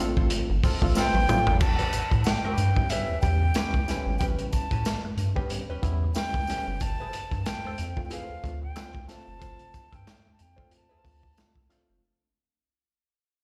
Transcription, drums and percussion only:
0.17 kick
0.30 closed hi-hat
0.64 kick, open hi-hat, tambourine
0.82 kick
0.95 snare, tambourine
1.15 high tom
1.29 mid tom, tambourine
1.47 floor tom
1.60 kick, crash, tambourine
1.79 closed hi-hat
1.93 closed hi-hat, tambourine
2.11 kick, closed hi-hat
2.24 snare, closed hi-hat, tambourine
2.58 closed hi-hat, tambourine
2.76 kick
2.89 closed hi-hat, tambourine
3.22 kick, closed hi-hat, tambourine
3.54 snare, closed hi-hat, tambourine
3.74 kick
3.88 snare, closed hi-hat, tambourine
4.21 kick, closed hi-hat, tambourine
4.39 closed hi-hat
4.53 kick, closed hi-hat, tambourine
4.71 kick, closed hi-hat
4.85 snare, closed hi-hat, tambourine
5.18 closed hi-hat, tambourine
5.36 kick
5.50 closed hi-hat, tambourine
5.83 kick, closed hi-hat, tambourine
6.15 snare, closed hi-hat, tambourine
6.34 kick
6.47 snare, closed hi-hat, tambourine
6.80 kick, closed hi-hat, tambourine
7.13 closed hi-hat, tambourine
7.31 kick, closed hi-hat
7.46 snare, closed hi-hat, tambourine
7.78 closed hi-hat, tambourine
7.97 kick
8.10 closed hi-hat, tambourine
8.44 kick, closed hi-hat
8.76 snare, closed hi-hat, tambourine
8.95 kick
9.09 snare, closed hi-hat, tambourine
9.42 kick, closed hi-hat, tambourine
9.59 closed hi-hat
9.74 kick, closed hi-hat, tambourine
9.93 kick, closed hi-hat
10.07 snare, closed hi-hat, tambourine
10.39 closed hi-hat, tambourine
10.58 kick
10.71 closed hi-hat
11.05 kick, open hi-hat, tambourine
11.23 kick
11.37 snare, closed hi-hat, tambourine
11.56 kick
11.70 snare, closed hi-hat, tambourine

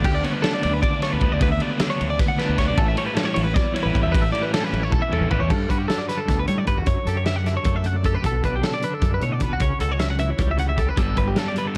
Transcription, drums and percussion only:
0.04 kick, crash
0.24 ride
0.44 snare, ride
0.63 ride
0.83 kick, ride
1.02 snare, ride
1.21 kick, ride
1.41 kick, ride
1.60 ride
1.79 snare, ride
2.01 ride
2.19 kick, snare, ride
2.39 snare, ride
2.58 kick, snare, ride
2.77 kick, ride
2.97 ride
3.16 snare, ride
3.36 ride
3.56 kick, snare, ride
3.76 ride
3.95 kick, ride
4.14 kick, ride
4.35 ride
4.54 snare, ride
4.73 ride
4.92 kick, high tom
5.13 mid tom
5.31 floor tom
5.50 kick, crash
5.70 kick, closed hi-hat
5.89 snare, closed hi-hat
6.09 snare, closed hi-hat
6.28 kick, snare, closed hi-hat
6.47 closed hi-hat
6.67 kick, closed hi-hat
6.86 kick, closed hi-hat
7.07 closed hi-hat
7.25 snare, closed hi-hat
7.46 snare, closed hi-hat
7.64 kick, closed hi-hat
7.84 closed hi-hat
8.04 kick, closed hi-hat
8.24 kick, closed hi-hat
8.44 kick, closed hi-hat
8.63 snare, closed hi-hat
8.82 closed hi-hat
9.01 kick, closed hi-hat
9.21 closed hi-hat
9.40 kick, closed hi-hat
9.60 kick, closed hi-hat
9.80 closed hi-hat
9.99 snare, closed hi-hat
10.19 closed hi-hat
10.38 kick, closed hi-hat
10.58 closed hi-hat
10.78 kick, closed hi-hat
10.97 kick, closed hi-hat
11.17 kick, closed hi-hat
11.36 snare, closed hi-hat
11.56 closed hi-hat

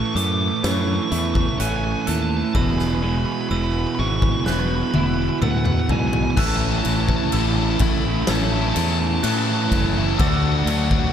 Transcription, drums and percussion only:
0.16 closed hi-hat
0.64 snare, closed hi-hat
1.12 closed hi-hat
1.35 kick
1.60 closed hi-hat
2.07 closed hi-hat
2.55 kick
2.79 snare
4.22 kick
4.46 snare
4.94 high tom
5.42 mid tom
5.65 mid tom
5.89 floor tom
6.13 floor tom
6.37 kick, crash
6.85 ride
7.09 kick
7.32 ride
7.79 kick, ride
8.27 snare, ride
8.76 ride
9.23 ride
9.72 kick, ride
10.19 kick, ride
10.67 ride
10.91 kick

